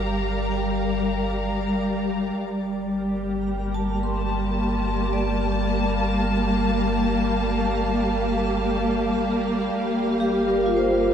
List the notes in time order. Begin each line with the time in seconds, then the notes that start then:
Already playing: G1 G3 G4 A#4 D5 F5 A#5 D6
0.51 G5
2.36 G1 A#3 A#4
2.85 G4
3.74 A5
3.91 A#3
4.03 C6
4.18 A5
5.13 D5
5.66 F5
9.73 G1
10.20 G4
10.48 A#4
10.66 F4
10.76 C5